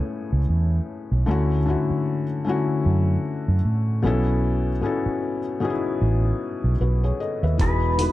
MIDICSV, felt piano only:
0, 0, Header, 1, 2, 480
1, 0, Start_track
1, 0, Tempo, 789474
1, 778, Time_signature, 4, 2, 24, 8
1, 4938, End_track
2, 0, Start_track
2, 0, Title_t, "Felt piano"
2, 0, Program_c, 0, 0
2, 0, Control_c, 0, 64, 127
2, 0, Note_on_c, 0, 45, 81
2, 0, Note_on_c, 0, 57, 73
2, 0, Note_on_c, 0, 59, 73
2, 0, Note_on_c, 0, 61, 75
2, 0, Note_on_c, 0, 68, 77
2, 0, Note_on_c, 0, 80, 93
2, 235, Note_off_c, 0, 45, 0
2, 238, Note_off_c, 0, 57, 0
2, 241, Note_off_c, 0, 59, 0
2, 245, Note_off_c, 0, 61, 0
2, 248, Note_off_c, 0, 80, 0
2, 767, Note_on_c, 0, 50, 92
2, 774, Note_on_c, 0, 57, 83
2, 781, Note_on_c, 0, 61, 77
2, 786, Control_c, 0, 64, 0
2, 788, Note_on_c, 0, 64, 80
2, 792, Note_off_c, 0, 68, 0
2, 795, Note_on_c, 0, 66, 97
2, 902, Control_c, 0, 64, 127
2, 948, Note_off_c, 0, 50, 0
2, 951, Note_off_c, 0, 57, 0
2, 955, Note_off_c, 0, 61, 0
2, 958, Note_off_c, 0, 64, 0
2, 962, Note_off_c, 0, 66, 0
2, 1007, Note_on_c, 0, 50, 81
2, 1013, Note_on_c, 0, 57, 72
2, 1019, Note_on_c, 0, 61, 73
2, 1025, Note_on_c, 0, 64, 77
2, 1033, Note_on_c, 0, 66, 90
2, 1352, Note_off_c, 0, 50, 0
2, 1355, Note_off_c, 0, 57, 0
2, 1358, Note_off_c, 0, 61, 0
2, 1361, Note_off_c, 0, 64, 0
2, 1365, Note_off_c, 0, 66, 0
2, 1487, Note_on_c, 0, 50, 83
2, 1495, Note_on_c, 0, 57, 72
2, 1501, Note_on_c, 0, 61, 75
2, 1507, Note_on_c, 0, 64, 75
2, 1515, Note_on_c, 0, 66, 93
2, 2154, Note_off_c, 0, 50, 0
2, 2158, Note_off_c, 0, 57, 0
2, 2161, Note_off_c, 0, 61, 0
2, 2164, Note_off_c, 0, 64, 0
2, 2168, Note_off_c, 0, 66, 0
2, 2447, Note_on_c, 0, 47, 89
2, 2454, Note_on_c, 0, 59, 85
2, 2461, Note_on_c, 0, 61, 81
2, 2466, Note_on_c, 0, 64, 84
2, 2467, Control_c, 0, 64, 0
2, 2474, Note_on_c, 0, 69, 98
2, 2554, Control_c, 0, 64, 127
2, 2852, Note_off_c, 0, 47, 0
2, 2855, Note_off_c, 0, 59, 0
2, 2859, Note_off_c, 0, 61, 0
2, 2861, Note_off_c, 0, 64, 0
2, 2865, Note_off_c, 0, 69, 0
2, 2926, Note_on_c, 0, 47, 78
2, 2932, Note_on_c, 0, 59, 72
2, 2938, Note_on_c, 0, 61, 78
2, 2946, Note_on_c, 0, 64, 72
2, 2952, Note_on_c, 0, 69, 90
2, 3271, Note_off_c, 0, 47, 0
2, 3274, Note_off_c, 0, 59, 0
2, 3277, Note_off_c, 0, 61, 0
2, 3281, Note_off_c, 0, 64, 0
2, 3284, Note_off_c, 0, 69, 0
2, 3406, Note_on_c, 0, 47, 83
2, 3412, Note_on_c, 0, 59, 75
2, 3419, Note_on_c, 0, 61, 70
2, 3425, Note_on_c, 0, 63, 56
2, 3432, Note_on_c, 0, 68, 85
2, 3465, Note_on_c, 0, 64, 78
2, 3468, Note_off_c, 0, 63, 0
2, 4074, Note_off_c, 0, 47, 0
2, 4077, Note_off_c, 0, 59, 0
2, 4080, Note_off_c, 0, 61, 0
2, 4087, Note_off_c, 0, 68, 0
2, 4104, Note_off_c, 0, 64, 0
2, 4140, Note_on_c, 0, 71, 58
2, 4143, Note_on_c, 0, 66, 49
2, 4271, Note_off_c, 0, 71, 0
2, 4273, Note_off_c, 0, 66, 0
2, 4279, Note_on_c, 0, 73, 62
2, 4283, Note_on_c, 0, 68, 57
2, 4374, Note_off_c, 0, 73, 0
2, 4376, Note_off_c, 0, 68, 0
2, 4379, Note_on_c, 0, 75, 65
2, 4383, Note_on_c, 0, 69, 55
2, 4511, Note_off_c, 0, 75, 0
2, 4513, Note_off_c, 0, 69, 0
2, 4518, Note_on_c, 0, 76, 61
2, 4522, Note_on_c, 0, 71, 52
2, 4606, Note_on_c, 0, 52, 70
2, 4613, Note_on_c, 0, 59, 67
2, 4620, Note_on_c, 0, 63, 65
2, 4626, Note_on_c, 0, 66, 67
2, 4627, Control_c, 0, 64, 0
2, 4634, Note_on_c, 0, 68, 82
2, 4719, Control_c, 0, 64, 127
2, 4746, Note_off_c, 0, 76, 0
2, 4748, Note_off_c, 0, 71, 0
2, 4787, Note_off_c, 0, 52, 0
2, 4791, Note_off_c, 0, 59, 0
2, 4794, Note_off_c, 0, 63, 0
2, 4797, Note_off_c, 0, 66, 0
2, 4801, Note_off_c, 0, 68, 0
2, 4849, Note_on_c, 0, 52, 69
2, 4855, Note_on_c, 0, 59, 62
2, 4862, Note_on_c, 0, 63, 61
2, 4869, Note_on_c, 0, 66, 58
2, 4876, Note_on_c, 0, 71, 74
2, 4938, Note_off_c, 0, 52, 0
2, 4938, Note_off_c, 0, 59, 0
2, 4938, Note_off_c, 0, 63, 0
2, 4938, Note_off_c, 0, 66, 0
2, 4938, Note_off_c, 0, 71, 0
2, 4938, End_track
0, 0, End_of_file